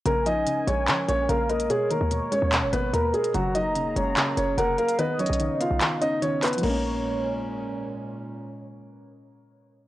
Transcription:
<<
  \new Staff \with { instrumentName = "Soft synth lead" } { \time 4/4 \key bes \phrygian \tempo 4 = 146 aes''2. f''8 ees''8 | des''2. ces''8 bes'8 | bes''2. ges''8 f''8 | dis''2 r2 |
des''2. r4 | r1 | }
  \new Staff \with { instrumentName = "Grand piano" } { \time 4/4 \key bes \phrygian <bes bes'>8 <ees' ees''>4 <des' des''>4 <des' des''>8 <bes bes'>8 <bes bes'>8 | <aes aes'>8 <bes bes'>4 <des' des''>4 <ces' ces''>8 <bes bes'>8 <aes aes'>8 | <ges ges'>8 <ees' ees''>4 <des' des''>4 <des' des''>8 <bes bes'>8 <bes bes'>8 | <b b'>8 <cis' cis''>4 <f' f''>4 <dis' dis''>8 <cis' cis''>8 <b b'>8 |
bes2. r4 | r1 | }
  \new Staff \with { instrumentName = "Analog synth pad" } { \time 4/4 \key bes \phrygian << { <aes bes'>1~ | <aes bes'>1 | <ges aes'>1 | <cis dis'>1 |
<bes, aes des'>1~ | <bes, aes des'>1 | } \\ { des'1 | ces1 | bes1 | b1 |
r1 | r1 | } >> }
  \new Staff \with { instrumentName = "Synth pluck" } { \clef bass \time 4/4 \key bes \phrygian des8 f8 des8 aes8 des8 bes8 des4 | ces8 ees8 ces8 aes8 ces8 bes8 ces4 | des8 ges8 des8 aes8 des8 bes8 des4 | dis8 fis8 dis8 b8 dis8 cis'8 dis4 |
<f aes bes des'>1~ | <f aes bes des'>1 | }
  \new Staff \with { instrumentName = "808-style bass" } { \clef bass \time 4/4 \key bes \phrygian bes,,4 r8 bes,,8 f8 bes,,8 bes,,4 | r8. ees,8 r8 ees,8 ges,,16 aes,,8 ees,8 r8 | ges,,4. ges,,8 r8 ges,,8 f,,8 r8 | r8. b,,8 r8 b,,16 r2 |
bes,,1 | r1 | }
  \new DrumStaff \with { instrumentName = "Drums" } \drummode { \time 4/4 hh8 hh8 hh8 hh8 <hc hh>8 hh8 hh8 hh16 hh16 | hh8 hh8 hh8 hh8 <hc hh>8 hh8 hh8 hh16 hh16 | hh8 hh8 hh8 hh8 <hc hh>8 hh8 hh8 hh16 hh16 | \tuplet 3/2 { hh16 r16 r16 hh16 hh16 hh16 } hh8 hh8 <hc hh>8 hh8 hh8 <hc hh hho>32 hh32 hh32 hh32 |
cymc4 r4 r4 r4 | r4 r4 r4 r4 | }
>>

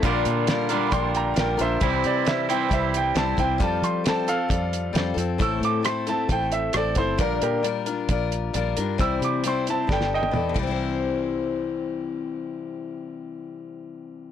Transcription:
<<
  \new Staff \with { instrumentName = "Upright piano" } { \time 4/4 \key c \major \tempo 4 = 134 r2 <g'' b'' c'''>8 <g'' bes''>8 <bes' g''>8 <c'' e''>8 | r8 d''8 e''8 g''8 e''8 g''8 a''8 g''8 | a''8 c'''8 a''8 <a' f''>2 r8 | e'''8 d'''8 c'''8 a''8 g''8 e''8 d''8 c''8 |
bes'8 <g' bes'>8 r2. | e'''8 d'''8 c'''8 a''8 g''8 <ees'' g''>4 r8 | r1 | r1 | }
  \new Staff \with { instrumentName = "Steel-string acoustic guitar" } { \time 4/4 \key c \major <bes, d g d' f' bes'>4 <g d' f' bes'>8 <g d' f' bes'>8 <g d' f' bes'>4 <g d' f' bes'>8 <g d' f' bes'>8 | <c e g c' e' c''>4 <g c' e' c''>8 <g c' e' c''>8 <g c' e' c''>4 <g c' e' c''>8 <g c' e' c''>8 | <f g c' f' a'>4 <g c' f' a'>8 <c' f' a'>8 <g c' f' a'>4 <g c' f' a'>8 <c' f' a'>8 | <a, e a c' e' a'>4 <a c' e' a'>8 <a c' e' a'>8 <a c' e' a'>4 <a c' e' a'>8 <a c' e' a'>8 |
<bes, d g d' f' bes'>4 <g d' f' bes'>8 <g d' f' bes'>8 <g d' f' bes'>4 <g d' f' bes'>8 <g d' f' bes'>8 | <c e g c' e' c''>4 <g c' e' c''>8 <g c' e' c''>8 <b d' g' a'>4 <b d' g' a'>8 <c e g c' e' c''>8~ | <c e g c' e' c''>1~ | <c e g c' e' c''>1 | }
  \new Staff \with { instrumentName = "Clean electric guitar" } { \clef bass \time 4/4 \key c \major <bes, d g d' f'>4. <bes, d g d' f'>2~ <bes, d g d' f'>8 | <c e g c' e'>4. <c e g c' e'>2~ <c e g c' e'>8 | r1 | r1 |
r1 | r1 | r1 | r1 | }
  \new Staff \with { instrumentName = "Fingered electric bass" } { \clef bass \time 4/4 \key c \major bes,,8 bes,4. bes,,4 bes,,8 bes,,8 | c,8 c4. c,4 c,8 c,8 | f,8 f4. f,4 f,8 f,8 | a,,8 a,4. a,,4 a,,8 g,,8 |
bes,,8 bes,4. bes,,4 bes,,8 g,8 | c,8 c4. g,,4 e,8 c,8~ | c,1~ | c,1 | }
  \new DrumStaff \with { instrumentName = "Drums" } \drummode { \time 4/4 <hh bd>8 hh8 <hh sn>8 hh8 <hh bd>8 hh8 <hh sn>8 hh8 | <hh bd>8 hh8 <hh sn>8 hh8 <hh bd>8 hh8 <hh sn>8 <hh bd>8 | <hh bd>8 hh8 <hh sn>8 hh8 <hh bd>8 hh8 <hh sn>8 hh8 | <hh bd>8 hh8 <hh ss>8 hh8 <hh bd>8 hh8 <hh ss>8 <hh bd>8 |
<hh bd>8 hh8 hh8 hh8 <hh bd>8 hh8 hh8 hh8 | <hh bd>8 hh8 hh8 hh8 <bd sn>16 sn8 tommh16 toml8 <bd cymr>8 | r4 r4 r4 r4 | r4 r4 r4 r4 | }
>>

